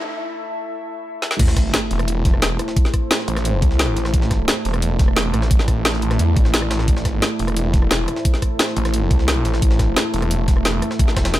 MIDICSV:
0, 0, Header, 1, 5, 480
1, 0, Start_track
1, 0, Key_signature, 0, "minor"
1, 0, Tempo, 342857
1, 31, Time_signature, 4, 2, 24, 8
1, 15957, End_track
2, 0, Start_track
2, 0, Title_t, "Ambient pad"
2, 0, Program_c, 0, 92
2, 0, Note_on_c, 0, 57, 79
2, 0, Note_on_c, 0, 64, 74
2, 0, Note_on_c, 0, 69, 71
2, 0, Note_on_c, 0, 76, 86
2, 1895, Note_off_c, 0, 57, 0
2, 1895, Note_off_c, 0, 64, 0
2, 1895, Note_off_c, 0, 69, 0
2, 1919, Note_off_c, 0, 76, 0
2, 1952, Note_on_c, 0, 57, 79
2, 1952, Note_on_c, 0, 72, 88
2, 1953, Note_on_c, 0, 64, 71
2, 1953, Note_on_c, 0, 69, 76
2, 5777, Note_off_c, 0, 72, 0
2, 5792, Note_on_c, 0, 74, 85
2, 9617, Note_off_c, 0, 74, 0
2, 9631, Note_on_c, 0, 72, 88
2, 13457, Note_off_c, 0, 72, 0
2, 13471, Note_on_c, 0, 76, 91
2, 15957, Note_off_c, 0, 57, 0
2, 15957, Note_off_c, 0, 64, 0
2, 15957, Note_off_c, 0, 69, 0
2, 15957, Note_off_c, 0, 76, 0
2, 15957, End_track
3, 0, Start_track
3, 0, Title_t, "Detuned saw bass"
3, 0, Program_c, 1, 39
3, 1952, Note_on_c, 1, 33, 98
3, 2412, Note_off_c, 1, 33, 0
3, 2672, Note_on_c, 1, 28, 98
3, 3372, Note_off_c, 1, 28, 0
3, 3392, Note_on_c, 1, 28, 103
3, 3612, Note_off_c, 1, 28, 0
3, 4591, Note_on_c, 1, 33, 93
3, 5052, Note_off_c, 1, 33, 0
3, 5072, Note_on_c, 1, 36, 95
3, 5532, Note_off_c, 1, 36, 0
3, 5551, Note_on_c, 1, 33, 99
3, 5772, Note_off_c, 1, 33, 0
3, 5792, Note_on_c, 1, 33, 99
3, 6252, Note_off_c, 1, 33, 0
3, 6511, Note_on_c, 1, 28, 96
3, 7212, Note_off_c, 1, 28, 0
3, 7231, Note_on_c, 1, 28, 99
3, 7452, Note_off_c, 1, 28, 0
3, 7471, Note_on_c, 1, 33, 92
3, 8652, Note_off_c, 1, 33, 0
3, 8672, Note_on_c, 1, 40, 100
3, 8892, Note_off_c, 1, 40, 0
3, 8911, Note_on_c, 1, 33, 92
3, 9612, Note_off_c, 1, 33, 0
3, 9631, Note_on_c, 1, 33, 100
3, 10092, Note_off_c, 1, 33, 0
3, 10352, Note_on_c, 1, 28, 95
3, 11052, Note_off_c, 1, 28, 0
3, 11072, Note_on_c, 1, 28, 98
3, 11292, Note_off_c, 1, 28, 0
3, 12271, Note_on_c, 1, 33, 97
3, 12732, Note_off_c, 1, 33, 0
3, 12751, Note_on_c, 1, 36, 93
3, 13212, Note_off_c, 1, 36, 0
3, 13231, Note_on_c, 1, 33, 99
3, 13452, Note_off_c, 1, 33, 0
3, 13471, Note_on_c, 1, 33, 95
3, 13932, Note_off_c, 1, 33, 0
3, 14191, Note_on_c, 1, 28, 96
3, 14892, Note_off_c, 1, 28, 0
3, 14911, Note_on_c, 1, 28, 96
3, 15132, Note_off_c, 1, 28, 0
3, 15392, Note_on_c, 1, 33, 97
3, 15612, Note_off_c, 1, 33, 0
3, 15632, Note_on_c, 1, 28, 101
3, 15957, Note_off_c, 1, 28, 0
3, 15957, End_track
4, 0, Start_track
4, 0, Title_t, "Sub drop"
4, 0, Program_c, 2, 103
4, 1951, Note_on_c, 2, 60, 78
4, 3871, Note_off_c, 2, 60, 0
4, 15957, End_track
5, 0, Start_track
5, 0, Title_t, "Drums"
5, 1712, Note_on_c, 9, 38, 61
5, 1832, Note_off_c, 9, 38, 0
5, 1832, Note_on_c, 9, 38, 76
5, 1951, Note_on_c, 9, 36, 118
5, 1951, Note_on_c, 9, 42, 89
5, 1952, Note_off_c, 9, 42, 0
5, 1952, Note_on_c, 9, 42, 97
5, 1952, Note_on_c, 9, 49, 101
5, 1972, Note_off_c, 9, 38, 0
5, 2071, Note_on_c, 9, 38, 57
5, 2091, Note_off_c, 9, 36, 0
5, 2092, Note_off_c, 9, 42, 0
5, 2092, Note_off_c, 9, 49, 0
5, 2191, Note_on_c, 9, 36, 59
5, 2191, Note_on_c, 9, 37, 37
5, 2191, Note_on_c, 9, 42, 67
5, 2192, Note_off_c, 9, 38, 0
5, 2192, Note_off_c, 9, 42, 0
5, 2192, Note_on_c, 9, 38, 52
5, 2192, Note_on_c, 9, 42, 67
5, 2331, Note_off_c, 9, 36, 0
5, 2331, Note_off_c, 9, 37, 0
5, 2332, Note_off_c, 9, 38, 0
5, 2332, Note_off_c, 9, 42, 0
5, 2431, Note_on_c, 9, 38, 124
5, 2431, Note_on_c, 9, 42, 100
5, 2571, Note_off_c, 9, 38, 0
5, 2571, Note_off_c, 9, 42, 0
5, 2671, Note_on_c, 9, 42, 67
5, 2671, Note_on_c, 9, 46, 82
5, 2791, Note_off_c, 9, 42, 0
5, 2791, Note_on_c, 9, 37, 52
5, 2791, Note_on_c, 9, 42, 40
5, 2811, Note_off_c, 9, 46, 0
5, 2911, Note_off_c, 9, 42, 0
5, 2911, Note_on_c, 9, 42, 96
5, 2931, Note_off_c, 9, 37, 0
5, 3051, Note_off_c, 9, 42, 0
5, 3151, Note_on_c, 9, 36, 108
5, 3151, Note_on_c, 9, 38, 46
5, 3151, Note_on_c, 9, 42, 67
5, 3271, Note_on_c, 9, 37, 35
5, 3291, Note_off_c, 9, 36, 0
5, 3291, Note_off_c, 9, 38, 0
5, 3291, Note_off_c, 9, 42, 0
5, 3390, Note_on_c, 9, 38, 115
5, 3390, Note_on_c, 9, 42, 90
5, 3391, Note_off_c, 9, 38, 0
5, 3391, Note_off_c, 9, 42, 0
5, 3391, Note_on_c, 9, 38, 123
5, 3391, Note_on_c, 9, 42, 97
5, 3411, Note_off_c, 9, 37, 0
5, 3531, Note_off_c, 9, 38, 0
5, 3531, Note_off_c, 9, 42, 0
5, 3630, Note_on_c, 9, 37, 48
5, 3630, Note_on_c, 9, 42, 68
5, 3750, Note_on_c, 9, 38, 60
5, 3770, Note_off_c, 9, 37, 0
5, 3770, Note_off_c, 9, 42, 0
5, 3870, Note_on_c, 9, 42, 92
5, 3871, Note_off_c, 9, 42, 0
5, 3871, Note_on_c, 9, 36, 122
5, 3871, Note_on_c, 9, 42, 95
5, 3890, Note_off_c, 9, 38, 0
5, 3991, Note_on_c, 9, 38, 36
5, 4011, Note_off_c, 9, 36, 0
5, 4011, Note_off_c, 9, 42, 0
5, 4110, Note_on_c, 9, 42, 70
5, 4111, Note_off_c, 9, 42, 0
5, 4111, Note_on_c, 9, 36, 62
5, 4111, Note_on_c, 9, 37, 37
5, 4111, Note_on_c, 9, 42, 64
5, 4131, Note_off_c, 9, 38, 0
5, 4251, Note_off_c, 9, 36, 0
5, 4251, Note_off_c, 9, 37, 0
5, 4251, Note_off_c, 9, 42, 0
5, 4350, Note_on_c, 9, 38, 116
5, 4350, Note_on_c, 9, 42, 90
5, 4351, Note_off_c, 9, 38, 0
5, 4351, Note_off_c, 9, 42, 0
5, 4351, Note_on_c, 9, 38, 124
5, 4351, Note_on_c, 9, 42, 97
5, 4471, Note_off_c, 9, 38, 0
5, 4471, Note_on_c, 9, 38, 55
5, 4491, Note_off_c, 9, 42, 0
5, 4591, Note_on_c, 9, 42, 67
5, 4611, Note_off_c, 9, 38, 0
5, 4711, Note_off_c, 9, 42, 0
5, 4711, Note_on_c, 9, 37, 55
5, 4711, Note_on_c, 9, 38, 46
5, 4711, Note_on_c, 9, 42, 40
5, 4831, Note_off_c, 9, 42, 0
5, 4831, Note_on_c, 9, 42, 98
5, 4851, Note_off_c, 9, 37, 0
5, 4851, Note_off_c, 9, 38, 0
5, 4971, Note_off_c, 9, 42, 0
5, 5071, Note_on_c, 9, 36, 110
5, 5071, Note_on_c, 9, 42, 65
5, 5191, Note_on_c, 9, 38, 43
5, 5211, Note_off_c, 9, 36, 0
5, 5211, Note_off_c, 9, 42, 0
5, 5311, Note_off_c, 9, 38, 0
5, 5311, Note_on_c, 9, 38, 127
5, 5311, Note_on_c, 9, 42, 96
5, 5451, Note_off_c, 9, 38, 0
5, 5451, Note_off_c, 9, 42, 0
5, 5551, Note_on_c, 9, 38, 46
5, 5551, Note_on_c, 9, 42, 71
5, 5552, Note_off_c, 9, 42, 0
5, 5552, Note_on_c, 9, 42, 66
5, 5671, Note_off_c, 9, 38, 0
5, 5671, Note_on_c, 9, 38, 62
5, 5672, Note_on_c, 9, 37, 38
5, 5692, Note_off_c, 9, 42, 0
5, 5791, Note_on_c, 9, 36, 118
5, 5791, Note_on_c, 9, 42, 91
5, 5792, Note_off_c, 9, 42, 0
5, 5792, Note_on_c, 9, 42, 91
5, 5811, Note_off_c, 9, 38, 0
5, 5812, Note_off_c, 9, 37, 0
5, 5911, Note_on_c, 9, 38, 60
5, 5931, Note_off_c, 9, 36, 0
5, 5932, Note_off_c, 9, 42, 0
5, 6031, Note_off_c, 9, 38, 0
5, 6031, Note_on_c, 9, 36, 63
5, 6031, Note_on_c, 9, 37, 36
5, 6031, Note_on_c, 9, 38, 51
5, 6031, Note_on_c, 9, 42, 67
5, 6171, Note_off_c, 9, 36, 0
5, 6171, Note_off_c, 9, 37, 0
5, 6171, Note_off_c, 9, 38, 0
5, 6171, Note_off_c, 9, 42, 0
5, 6271, Note_on_c, 9, 38, 127
5, 6271, Note_on_c, 9, 42, 94
5, 6411, Note_off_c, 9, 38, 0
5, 6411, Note_off_c, 9, 42, 0
5, 6511, Note_on_c, 9, 46, 79
5, 6512, Note_on_c, 9, 42, 63
5, 6632, Note_off_c, 9, 42, 0
5, 6632, Note_on_c, 9, 37, 53
5, 6632, Note_on_c, 9, 42, 38
5, 6651, Note_off_c, 9, 46, 0
5, 6751, Note_off_c, 9, 42, 0
5, 6751, Note_on_c, 9, 42, 88
5, 6752, Note_off_c, 9, 42, 0
5, 6752, Note_on_c, 9, 42, 94
5, 6772, Note_off_c, 9, 37, 0
5, 6892, Note_off_c, 9, 42, 0
5, 6991, Note_on_c, 9, 36, 115
5, 6991, Note_on_c, 9, 38, 47
5, 6991, Note_on_c, 9, 42, 67
5, 6992, Note_off_c, 9, 42, 0
5, 6992, Note_on_c, 9, 42, 64
5, 7112, Note_on_c, 9, 37, 36
5, 7131, Note_off_c, 9, 36, 0
5, 7131, Note_off_c, 9, 38, 0
5, 7132, Note_off_c, 9, 42, 0
5, 7231, Note_on_c, 9, 38, 127
5, 7231, Note_on_c, 9, 42, 94
5, 7252, Note_off_c, 9, 37, 0
5, 7371, Note_off_c, 9, 38, 0
5, 7371, Note_off_c, 9, 42, 0
5, 7471, Note_on_c, 9, 37, 46
5, 7471, Note_on_c, 9, 42, 62
5, 7591, Note_on_c, 9, 38, 60
5, 7611, Note_off_c, 9, 37, 0
5, 7611, Note_off_c, 9, 42, 0
5, 7711, Note_on_c, 9, 36, 126
5, 7711, Note_on_c, 9, 42, 91
5, 7731, Note_off_c, 9, 38, 0
5, 7831, Note_on_c, 9, 38, 39
5, 7851, Note_off_c, 9, 36, 0
5, 7851, Note_off_c, 9, 42, 0
5, 7951, Note_on_c, 9, 36, 63
5, 7951, Note_on_c, 9, 37, 35
5, 7951, Note_on_c, 9, 42, 62
5, 7971, Note_off_c, 9, 38, 0
5, 8091, Note_off_c, 9, 36, 0
5, 8091, Note_off_c, 9, 37, 0
5, 8091, Note_off_c, 9, 42, 0
5, 8191, Note_on_c, 9, 38, 122
5, 8191, Note_on_c, 9, 42, 91
5, 8311, Note_off_c, 9, 38, 0
5, 8311, Note_on_c, 9, 38, 54
5, 8331, Note_off_c, 9, 42, 0
5, 8430, Note_on_c, 9, 42, 68
5, 8432, Note_off_c, 9, 42, 0
5, 8432, Note_on_c, 9, 42, 62
5, 8451, Note_off_c, 9, 38, 0
5, 8551, Note_off_c, 9, 42, 0
5, 8551, Note_on_c, 9, 37, 51
5, 8551, Note_on_c, 9, 38, 44
5, 8551, Note_on_c, 9, 42, 37
5, 8671, Note_off_c, 9, 42, 0
5, 8671, Note_on_c, 9, 42, 93
5, 8691, Note_off_c, 9, 37, 0
5, 8691, Note_off_c, 9, 38, 0
5, 8811, Note_off_c, 9, 42, 0
5, 8911, Note_on_c, 9, 36, 116
5, 8911, Note_on_c, 9, 42, 65
5, 9032, Note_on_c, 9, 38, 46
5, 9051, Note_off_c, 9, 36, 0
5, 9051, Note_off_c, 9, 42, 0
5, 9151, Note_off_c, 9, 38, 0
5, 9151, Note_on_c, 9, 38, 115
5, 9151, Note_on_c, 9, 42, 91
5, 9152, Note_off_c, 9, 38, 0
5, 9152, Note_off_c, 9, 42, 0
5, 9152, Note_on_c, 9, 38, 127
5, 9152, Note_on_c, 9, 42, 92
5, 9272, Note_on_c, 9, 37, 54
5, 9292, Note_off_c, 9, 38, 0
5, 9292, Note_off_c, 9, 42, 0
5, 9391, Note_on_c, 9, 38, 108
5, 9391, Note_on_c, 9, 42, 65
5, 9412, Note_off_c, 9, 37, 0
5, 9511, Note_off_c, 9, 38, 0
5, 9511, Note_on_c, 9, 37, 35
5, 9511, Note_on_c, 9, 38, 60
5, 9531, Note_off_c, 9, 42, 0
5, 9631, Note_on_c, 9, 36, 114
5, 9631, Note_on_c, 9, 42, 86
5, 9651, Note_off_c, 9, 37, 0
5, 9651, Note_off_c, 9, 38, 0
5, 9752, Note_on_c, 9, 38, 59
5, 9771, Note_off_c, 9, 36, 0
5, 9771, Note_off_c, 9, 42, 0
5, 9871, Note_on_c, 9, 36, 61
5, 9871, Note_on_c, 9, 37, 35
5, 9871, Note_on_c, 9, 42, 63
5, 9872, Note_off_c, 9, 38, 0
5, 9872, Note_off_c, 9, 42, 0
5, 9872, Note_on_c, 9, 38, 54
5, 9872, Note_on_c, 9, 42, 68
5, 10011, Note_off_c, 9, 36, 0
5, 10011, Note_off_c, 9, 37, 0
5, 10012, Note_off_c, 9, 38, 0
5, 10012, Note_off_c, 9, 42, 0
5, 10111, Note_on_c, 9, 38, 123
5, 10111, Note_on_c, 9, 42, 93
5, 10251, Note_off_c, 9, 38, 0
5, 10251, Note_off_c, 9, 42, 0
5, 10351, Note_on_c, 9, 42, 64
5, 10351, Note_on_c, 9, 46, 78
5, 10471, Note_off_c, 9, 42, 0
5, 10471, Note_on_c, 9, 37, 49
5, 10471, Note_on_c, 9, 42, 36
5, 10491, Note_off_c, 9, 46, 0
5, 10591, Note_off_c, 9, 42, 0
5, 10591, Note_on_c, 9, 42, 89
5, 10611, Note_off_c, 9, 37, 0
5, 10731, Note_off_c, 9, 42, 0
5, 10831, Note_on_c, 9, 36, 111
5, 10831, Note_on_c, 9, 38, 44
5, 10831, Note_on_c, 9, 42, 67
5, 10832, Note_off_c, 9, 42, 0
5, 10832, Note_on_c, 9, 42, 59
5, 10951, Note_on_c, 9, 37, 35
5, 10971, Note_off_c, 9, 36, 0
5, 10971, Note_off_c, 9, 38, 0
5, 10972, Note_off_c, 9, 42, 0
5, 11070, Note_on_c, 9, 38, 120
5, 11070, Note_on_c, 9, 42, 92
5, 11071, Note_off_c, 9, 38, 0
5, 11071, Note_off_c, 9, 42, 0
5, 11071, Note_on_c, 9, 38, 124
5, 11071, Note_on_c, 9, 42, 89
5, 11091, Note_off_c, 9, 37, 0
5, 11211, Note_off_c, 9, 38, 0
5, 11211, Note_off_c, 9, 42, 0
5, 11310, Note_on_c, 9, 42, 68
5, 11312, Note_off_c, 9, 42, 0
5, 11312, Note_on_c, 9, 37, 44
5, 11312, Note_on_c, 9, 42, 65
5, 11430, Note_on_c, 9, 38, 60
5, 11452, Note_off_c, 9, 37, 0
5, 11452, Note_off_c, 9, 42, 0
5, 11550, Note_on_c, 9, 42, 90
5, 11551, Note_off_c, 9, 42, 0
5, 11551, Note_on_c, 9, 36, 110
5, 11551, Note_on_c, 9, 42, 94
5, 11570, Note_off_c, 9, 38, 0
5, 11672, Note_on_c, 9, 38, 35
5, 11691, Note_off_c, 9, 36, 0
5, 11691, Note_off_c, 9, 42, 0
5, 11790, Note_on_c, 9, 42, 66
5, 11791, Note_on_c, 9, 36, 56
5, 11792, Note_off_c, 9, 42, 0
5, 11792, Note_on_c, 9, 37, 35
5, 11792, Note_on_c, 9, 42, 67
5, 11812, Note_off_c, 9, 38, 0
5, 11931, Note_off_c, 9, 36, 0
5, 11932, Note_off_c, 9, 37, 0
5, 11932, Note_off_c, 9, 42, 0
5, 12030, Note_on_c, 9, 38, 122
5, 12030, Note_on_c, 9, 42, 91
5, 12031, Note_off_c, 9, 38, 0
5, 12031, Note_off_c, 9, 42, 0
5, 12031, Note_on_c, 9, 38, 117
5, 12031, Note_on_c, 9, 42, 93
5, 12150, Note_off_c, 9, 38, 0
5, 12150, Note_on_c, 9, 38, 54
5, 12171, Note_off_c, 9, 42, 0
5, 12270, Note_on_c, 9, 42, 66
5, 12272, Note_off_c, 9, 42, 0
5, 12272, Note_on_c, 9, 42, 64
5, 12290, Note_off_c, 9, 38, 0
5, 12391, Note_off_c, 9, 42, 0
5, 12391, Note_on_c, 9, 37, 48
5, 12391, Note_on_c, 9, 38, 43
5, 12391, Note_on_c, 9, 42, 38
5, 12510, Note_off_c, 9, 42, 0
5, 12510, Note_on_c, 9, 42, 88
5, 12511, Note_off_c, 9, 42, 0
5, 12511, Note_on_c, 9, 42, 93
5, 12531, Note_off_c, 9, 37, 0
5, 12531, Note_off_c, 9, 38, 0
5, 12651, Note_off_c, 9, 42, 0
5, 12750, Note_on_c, 9, 42, 64
5, 12751, Note_off_c, 9, 42, 0
5, 12751, Note_on_c, 9, 36, 103
5, 12751, Note_on_c, 9, 42, 62
5, 12870, Note_on_c, 9, 38, 45
5, 12891, Note_off_c, 9, 36, 0
5, 12891, Note_off_c, 9, 42, 0
5, 12991, Note_off_c, 9, 38, 0
5, 12991, Note_on_c, 9, 38, 116
5, 12991, Note_on_c, 9, 42, 91
5, 13131, Note_off_c, 9, 38, 0
5, 13131, Note_off_c, 9, 42, 0
5, 13230, Note_on_c, 9, 38, 47
5, 13230, Note_on_c, 9, 42, 68
5, 13231, Note_off_c, 9, 42, 0
5, 13231, Note_on_c, 9, 42, 63
5, 13350, Note_off_c, 9, 38, 0
5, 13350, Note_on_c, 9, 38, 60
5, 13352, Note_on_c, 9, 37, 35
5, 13371, Note_off_c, 9, 42, 0
5, 13470, Note_on_c, 9, 42, 89
5, 13471, Note_off_c, 9, 42, 0
5, 13471, Note_on_c, 9, 36, 113
5, 13471, Note_on_c, 9, 42, 97
5, 13490, Note_off_c, 9, 38, 0
5, 13492, Note_off_c, 9, 37, 0
5, 13590, Note_on_c, 9, 38, 59
5, 13611, Note_off_c, 9, 36, 0
5, 13611, Note_off_c, 9, 42, 0
5, 13710, Note_off_c, 9, 38, 0
5, 13710, Note_on_c, 9, 38, 51
5, 13710, Note_on_c, 9, 42, 70
5, 13711, Note_on_c, 9, 36, 55
5, 13712, Note_off_c, 9, 42, 0
5, 13712, Note_on_c, 9, 37, 33
5, 13712, Note_on_c, 9, 42, 67
5, 13850, Note_off_c, 9, 38, 0
5, 13851, Note_off_c, 9, 36, 0
5, 13852, Note_off_c, 9, 37, 0
5, 13852, Note_off_c, 9, 42, 0
5, 13950, Note_on_c, 9, 38, 119
5, 13950, Note_on_c, 9, 42, 89
5, 13951, Note_off_c, 9, 38, 0
5, 13951, Note_off_c, 9, 42, 0
5, 13951, Note_on_c, 9, 38, 120
5, 13951, Note_on_c, 9, 42, 98
5, 14091, Note_off_c, 9, 38, 0
5, 14091, Note_off_c, 9, 42, 0
5, 14191, Note_on_c, 9, 46, 79
5, 14192, Note_on_c, 9, 42, 65
5, 14312, Note_off_c, 9, 42, 0
5, 14312, Note_on_c, 9, 37, 46
5, 14312, Note_on_c, 9, 42, 41
5, 14331, Note_off_c, 9, 46, 0
5, 14431, Note_off_c, 9, 42, 0
5, 14431, Note_on_c, 9, 42, 95
5, 14452, Note_off_c, 9, 37, 0
5, 14571, Note_off_c, 9, 42, 0
5, 14671, Note_on_c, 9, 36, 109
5, 14671, Note_on_c, 9, 38, 44
5, 14671, Note_on_c, 9, 42, 71
5, 14672, Note_off_c, 9, 42, 0
5, 14672, Note_on_c, 9, 42, 65
5, 14792, Note_on_c, 9, 37, 35
5, 14811, Note_off_c, 9, 36, 0
5, 14811, Note_off_c, 9, 38, 0
5, 14812, Note_off_c, 9, 42, 0
5, 14911, Note_on_c, 9, 38, 118
5, 14911, Note_on_c, 9, 42, 87
5, 14912, Note_off_c, 9, 38, 0
5, 14912, Note_off_c, 9, 42, 0
5, 14912, Note_on_c, 9, 38, 115
5, 14912, Note_on_c, 9, 42, 99
5, 14932, Note_off_c, 9, 37, 0
5, 15052, Note_off_c, 9, 38, 0
5, 15052, Note_off_c, 9, 42, 0
5, 15151, Note_on_c, 9, 37, 46
5, 15151, Note_on_c, 9, 42, 70
5, 15152, Note_off_c, 9, 42, 0
5, 15152, Note_on_c, 9, 42, 67
5, 15271, Note_on_c, 9, 38, 60
5, 15291, Note_off_c, 9, 37, 0
5, 15292, Note_off_c, 9, 42, 0
5, 15391, Note_on_c, 9, 42, 89
5, 15392, Note_off_c, 9, 42, 0
5, 15392, Note_on_c, 9, 36, 114
5, 15392, Note_on_c, 9, 42, 97
5, 15411, Note_off_c, 9, 38, 0
5, 15512, Note_on_c, 9, 38, 35
5, 15532, Note_off_c, 9, 36, 0
5, 15532, Note_off_c, 9, 42, 0
5, 15631, Note_off_c, 9, 38, 0
5, 15631, Note_on_c, 9, 38, 103
5, 15631, Note_on_c, 9, 42, 78
5, 15632, Note_off_c, 9, 42, 0
5, 15632, Note_on_c, 9, 36, 57
5, 15632, Note_on_c, 9, 37, 37
5, 15632, Note_on_c, 9, 42, 68
5, 15751, Note_off_c, 9, 38, 0
5, 15751, Note_off_c, 9, 42, 0
5, 15751, Note_on_c, 9, 38, 104
5, 15751, Note_on_c, 9, 42, 78
5, 15752, Note_off_c, 9, 42, 0
5, 15752, Note_on_c, 9, 42, 39
5, 15772, Note_off_c, 9, 36, 0
5, 15772, Note_off_c, 9, 37, 0
5, 15871, Note_off_c, 9, 38, 0
5, 15871, Note_off_c, 9, 42, 0
5, 15871, Note_on_c, 9, 38, 110
5, 15871, Note_on_c, 9, 42, 79
5, 15872, Note_off_c, 9, 38, 0
5, 15872, Note_off_c, 9, 42, 0
5, 15872, Note_on_c, 9, 38, 114
5, 15872, Note_on_c, 9, 42, 98
5, 15957, Note_off_c, 9, 38, 0
5, 15957, Note_off_c, 9, 42, 0
5, 15957, End_track
0, 0, End_of_file